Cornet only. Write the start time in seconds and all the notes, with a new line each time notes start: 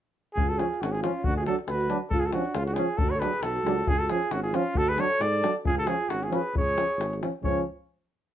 0.34 G#4
0.49 A4
0.58 G#4
0.81 F#4
0.92 G#4
1.03 F4
1.24 F#4
1.37 G#4
1.46 A4
1.69 B4
2.10 A4
2.20 G#4
2.25 A4
2.33 F#4
2.55 F4
2.66 F#4
2.74 G#4
2.97 A4
3.10 C#5
3.20 B4
3.42 A4
3.88 G#4
3.99 A4
4.10 G#4
4.32 F#4
4.43 G#4
4.55 F4
4.77 A4
4.89 B4
5.00 C#5
5.22 D5
5.66 G#4
5.78 A4
5.87 G#4
6.10 F#4
6.23 G#4
6.34 B4
6.57 C#5
7.44 C#5